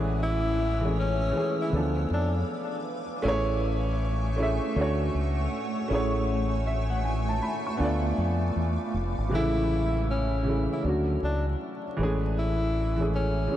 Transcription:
Already playing: fingered electric bass A1, upright piano E3 G#3 A3 C#4 G#4, ambient pad C#5 G#5 E6
0.23 tenor saxophone E4
0.80 upright piano E3 G#3 A3
0.85 upright piano C#4 G#4
0.99 tenor saxophone C#4
1.31 upright piano E3 G#3 A3
1.36 upright piano C#4 G#4
1.61 tenor saxophone E4
1.70 fingered electric bass D2, upright piano E3 A3 B3, ambient pad B4 F5 D6
1.74 upright piano F3 D4 A4
2.10 fingered electric bass F2, tenor saxophone D4
3.22 fingered electric bass A1, upright piano A3 C#4 E4, ambient pad A3 E5 G#5 C#6
3.27 upright piano G#4 C#5
4.36 upright piano A3 C#4 E4
4.41 upright piano G#4 E5
4.75 fingered electric bass D2, upright piano A3 C#4 D4, ambient pad C#5 F#5
4.80 upright piano F#4 C#5
5.14 fingered electric bass C#2
5.88 fingered electric bass A1, upright piano A3 C#4 E4, ambient pad A3 E5 G#5
5.93 upright piano G#4 C#5
6.67 upright piano E5
6.90 upright piano F#5
7.05 upright piano G#5
7.29 upright piano A5
7.42 upright piano B5
7.67 upright piano C#6
7.77 fingered electric bass D2, upright piano B3 D4 F4, ambient pad F5 B5 D6
7.82 upright piano A4 D5
8.18 fingered electric bass F2
8.56 fingered electric bass E2
8.94 fingered electric bass F1
9.18 fingered electric bass G#1
9.29 fingered electric bass A1, upright piano C3 E3 G#3
9.34 upright piano C#3 A3 E4, tenor saxophone E4
10.11 tenor saxophone C#4
10.43 upright piano C#3 E3 G#3
10.48 upright piano A3 E4
10.73 tenor saxophone E4
10.83 fingered electric bass D2, upright piano F#3 A3 D4
10.87 upright piano C#4 F#4
11.22 fingered electric bass C#2, tenor saxophone D4
11.97 fingered electric bass A1, upright piano E3 G#3 A3
12.02 upright piano C#4 G#4
12.38 tenor saxophone E4
12.96 upright piano E3 G#3 A3
13.01 upright piano C#4 G#4
13.15 tenor saxophone C#4
13.47 upright piano E3 G#3 A3
13.52 upright piano C#4 G#4

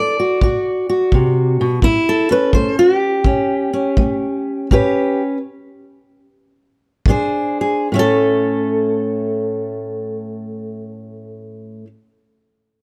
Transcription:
Already playing: steel-string acoustic guitar D4 A4 D5
0.20 steel-string acoustic guitar F#4
0.41 steel-string acoustic guitar A2 F#4, kick
0.89 steel-string acoustic guitar F#4
1.12 steel-string acoustic guitar C3, kick
1.61 steel-string acoustic guitar B2
1.82 steel-string acoustic guitar A2 E4, kick
2.09 steel-string acoustic guitar A4
2.31 steel-string acoustic guitar C#4 B4
2.53 steel-string acoustic guitar A3 C5, kick
2.79 steel-string acoustic guitar F#4
2.96 steel-string acoustic guitar G4
3.24 steel-string acoustic guitar E2 C#4, kick
3.73 steel-string acoustic guitar C#4
3.97 steel-string acoustic guitar A3, kick
4.71 steel-string acoustic guitar A2 C#4 G4 B4, kick
7.06 steel-string acoustic guitar A#2 D4, kick
7.10 steel-string acoustic guitar G#4 C5
7.61 steel-string acoustic guitar G#4
7.92 steel-string acoustic guitar A2 A3 C#4
7.99 steel-string acoustic guitar A4

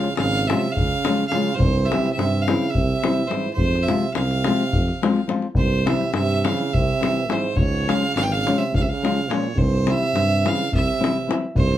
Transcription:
Already playing: trombone C#3, fiddle F5
0.04 davul high
0.16 tuba G#1, trombone C#3, fiddle F5, davul high
0.47 trombone C3, nylon-string guitar F3 G#3, fiddle E5, davul high
0.51 nylon-string guitar C#4 F4
0.72 trombone C#3, fiddle F5
0.76 tuba C#2, davul low
1.05 nylon-string guitar F3 G#3 C#4 F4, davul high
1.27 trombone C#3, fiddle F5
1.32 nylon-string guitar F3 G#3 C#4 F4, davul high
1.55 trombone G2, fiddle C5
1.59 tuba C2, davul low
1.85 trombone C3, nylon-string guitar E3, fiddle E5
1.90 nylon-string guitar G3 C4 E4, davul high
2.06 davul high
2.12 trombone C3, fiddle E5
2.18 tuba G2, davul high
2.42 fiddle F5
2.47 trombone C#3, nylon-string guitar E3 G3 C4 E4, davul high
2.70 fiddle E5
2.75 tuba C2, trombone C3, davul low
3.03 nylon-string guitar E3 G3 C4 E4, davul high
3.27 trombone G#2, nylon-string guitar E3 G3 C4, fiddle C5
3.31 nylon-string guitar E4, davul high
3.53 tuba F2, trombone G#2, fiddle C5
3.58 davul low
3.75 davul high
3.83 trombone C3, nylon-string guitar F3, fiddle E5
3.87 nylon-string guitar G#3 C4 F4, davul high
4.12 tuba C2, trombone C3, fiddle F5, davul high
4.31 davul high
4.44 nylon-string guitar F3 G#3 C4 F4, davul high
4.73 tuba F2, davul low
4.88 davul high
5.02 nylon-string guitar F3 G#3 C4 F4, davul high
5.16 davul high
5.27 nylon-string guitar F3 G#3 C4 F4, davul high
5.42 davul high
5.55 tuba C2, trombone G2, fiddle C5, davul low
5.85 trombone C3, nylon-string guitar E3 G3 C4 E4, fiddle E5, davul high
6.01 davul high
6.13 tuba G2, trombone C3, fiddle E5, davul high
6.44 trombone C#3, nylon-string guitar E3 G3 C4 E4, fiddle F5, davul high
6.73 tuba C2, trombone C3, fiddle E5, davul low
7.00 nylon-string guitar E3 G3 C4 E4, davul high
7.27 trombone G#2, nylon-string guitar E3 G3 C4 E4, davul high
7.31 fiddle C5
7.55 tuba C#2, trombone G#2, fiddle C#5, davul low
7.87 trombone C#3, nylon-string guitar F3 G#3 C#4 F4, fiddle F5, davul high
8.03 davul high
8.14 tuba G#1, trombone C#3, fiddle F5, davul high
8.23 trombone E3, fiddle G5
8.32 trombone C#3, fiddle F5
8.46 nylon-string guitar F3 G#3 C#4 F4, davul high
8.56 trombone C3, fiddle E5
8.73 tuba C#2, trombone C#3, fiddle F5, davul low
8.81 trombone C3, fiddle E5
8.88 trombone C#3, fiddle F5
9.02 nylon-string guitar F3 G#3 C#4 F4, davul high
9.29 trombone A#2, nylon-string guitar F3 G#3 C#4 F4, fiddle C#5, davul high
9.55 tuba C2, trombone G2, fiddle C5, davul low
9.87 trombone C3, nylon-string guitar E3 G3 C4 E4, fiddle E5, davul high
10.03 davul high
10.14 tuba G2, davul high
10.45 trombone C#3, nylon-string guitar E3 G3 C4 E4, fiddle F5, davul high
10.72 tuba C2, trombone C3, fiddle E5, davul low
10.99 nylon-string guitar E3 G3 C4 E4
11.04 davul high
11.27 nylon-string guitar E3 G3 C4 E4, davul high
11.55 tuba C2, trombone G2, fiddle C5, davul low
11.72 davul high

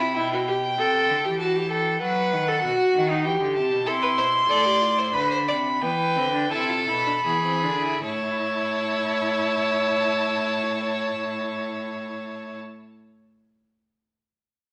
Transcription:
Already playing: cello C3, violin B5
0.01 violin E4
0.16 cello B2, viola E4, violin G5
0.32 viola F#4
0.48 viola G4
0.78 cello C3, viola A4
1.09 cello D3
1.24 cello E3, viola G4
1.39 viola F#4, violin A5
1.55 viola G4
1.70 viola A4, violin G5
2.01 cello F#3, viola B4, violin F#5
2.33 cello D#3
2.48 viola A4
2.63 cello B2, viola F#4
2.94 cello D#3
3.10 viola D#4
3.25 cello E3, viola G4, violin G5
3.40 cello D3
3.55 cello C3, violin A5
3.72 cello B2
3.86 cello C3, viola E4, violin A4 C6
4.02 violin B4
4.18 cello B2, violin C5
4.49 cello A2, viola A4, violin D5
4.65 viola G4
4.81 viola F4
4.98 viola E4, violin C5
5.13 cello D3, viola D4, violin B4 B5
5.31 violin C5
5.48 cello C3, violin D5
5.81 cello E3, viola B3, violin B4 G5
6.16 cello D3, viola C4
6.33 viola D4
6.51 cello C3, viola E4, violin A4 A5
6.69 viola F4
6.87 cello B2, viola E4, violin B5
7.06 viola D4
7.25 cello E3, viola B3, violin G#4
7.44 viola C4
7.63 cello D3, viola D4
7.83 viola E4
8.03 cello A2, viola E4, violin C#5 A5

